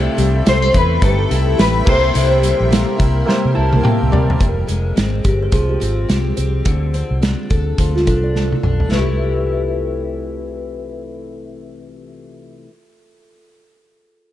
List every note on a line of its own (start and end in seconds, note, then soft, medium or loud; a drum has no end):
0.00 1.85 C3 loud
0.00 0.16 A3 medium
0.00 0.52 A3 loud
0.00 0.45 C4 medium
0.00 0.53 E4 loud
0.00 0.74 E4 medium
0.00 0.53 G4 loud
0.00 1.83 A4 medium
0.00 0.54 C5 loud
0.00 1.89 E5 medium
0.00 4.37 E5 medium
0.00 4.37 G5 medium
0.17 0.41 C2 loud
0.17 0.46 G3 medium
0.17 closed hi-hat medium
0.46 0.69 C2 loud
0.46 0.62 G3 medium
0.46 0.74 C5 loud
0.46 snare loud
0.46 closed hi-hat medium
0.62 1.57 A3 medium
0.74 0.97 E2 loud
0.74 1.31 E4 medium
0.74 1.02 B4 loud
0.74 kick loud
0.74 closed hi-hat medium
1.01 1.25 G1 loud
1.01 2.41 G3 medium
1.01 1.81 A3 medium
1.01 1.10 D#4 medium
1.01 1.82 G4 medium
1.01 1.60 A4 loud
1.01 1.82 B4 medium
1.01 kick loud
1.01 closed hi-hat medium
1.08 1.84 E4 medium
1.31 1.53 C2 medium
1.31 2.15 E4 medium
1.31 closed hi-hat medium
1.58 1.82 A1 loud
1.58 1.93 A3 medium
1.58 1.88 B4 loud
1.58 snare loud
1.58 closed hi-hat medium
1.85 2.10 C2 medium
1.85 2.13 C3 medium
1.85 2.77 A#3 medium
1.85 2.78 E4 medium
1.85 2.78 G4 medium
1.85 4.38 A#4 medium
1.85 2.79 C5 medium
1.85 3.81 C5 loud
1.85 kick loud
1.85 crash medium
2.14 2.51 C2 loud
2.14 4.40 C3 medium
2.14 2.97 E4 medium
2.14 closed hi-hat medium
2.42 3.27 G3 medium
2.42 closed hi-hat medium
2.60 2.83 A#1 medium
2.71 3.82 A#3 medium
2.71 snare loud
2.71 closed hi-hat medium
2.98 3.22 C2 loud
2.98 3.54 E4 medium
2.98 kick loud
2.98 closed hi-hat medium
3.25 4.11 G3 medium
3.25 4.06 A#3 medium
3.25 4.06 E4 medium
3.25 4.06 G4 medium
3.25 4.07 C5 medium
3.25 snare medium
3.45 3.54 C3 medium
3.55 3.70 C2 medium
3.55 4.47 E4 medium
3.55 3.82 A5 medium
3.73 3.83 C2 loud
3.73 high tom medium
3.83 4.47 A#3 medium
3.83 4.10 G5 medium
3.83 muted fingered electric bass stroke soft
3.83 mid tom loud
4.02 4.11 C2 medium
4.12 4.35 C3 loud
4.12 4.70 G3 medium
4.12 4.38 D5 medium
4.12 floor tom loud
4.30 floor tom medium
4.40 4.63 F1 loud
4.40 6.66 F2 medium
4.40 kick medium
4.40 closed hi-hat medium
4.67 4.91 F1 medium
4.67 6.72 G#3 medium
4.67 closed hi-hat medium
4.96 5.19 G#1 medium
4.96 5.80 C4 medium
4.96 snare loud
4.96 closed hi-hat medium
5.24 5.47 G1 medium
5.24 6.07 G4 soft
5.24 kick medium
5.24 closed hi-hat medium
5.43 5.53 C5 medium
5.52 5.75 C2 medium
5.52 7.78 F3 medium
5.52 5.69 G#4 medium
5.52 kick medium
5.52 closed hi-hat medium
5.69 6.50 G4 medium
5.80 6.04 G#1 medium
5.80 6.36 C4 medium
5.80 closed hi-hat medium
6.08 6.32 C2 medium
6.08 6.72 G4 medium
6.08 snare loud
6.08 closed hi-hat medium
6.37 6.60 C2 medium
6.37 6.94 C4 medium
6.37 closed hi-hat medium
6.65 7.02 D2 medium
6.65 8.90 D3 medium
6.65 kick loud
6.65 closed hi-hat medium
6.94 8.94 C4 soft
6.94 closed hi-hat medium
7.11 7.33 C2 medium
7.22 8.06 D4 medium
7.22 snare loud
7.22 closed hi-hat medium
7.50 7.73 D2 medium
7.50 8.36 A4 medium
7.50 kick medium
7.50 closed hi-hat medium
7.78 8.09 D2 medium
7.78 8.92 F3 medium
7.78 kick medium
7.78 closed hi-hat medium
7.96 8.06 F4 medium
7.96 snare soft
8.07 8.52 C2 medium
8.07 8.63 D4 medium
8.07 8.23 A4 medium
8.07 kick medium
8.07 closed hi-hat medium
8.24 8.88 D5 medium
8.36 8.97 A4 medium
8.36 snare soft
8.52 high tom medium
8.63 8.86 B1 medium
8.63 8.96 D4 medium
8.63 mid tom medium
8.80 floor tom medium
8.90 12.63 C2 medium
8.90 12.66 C3 medium
8.90 12.67 E3 medium
8.90 snare medium
8.94 12.68 A3 medium
8.94 12.69 E4 medium
8.94 12.70 G4 medium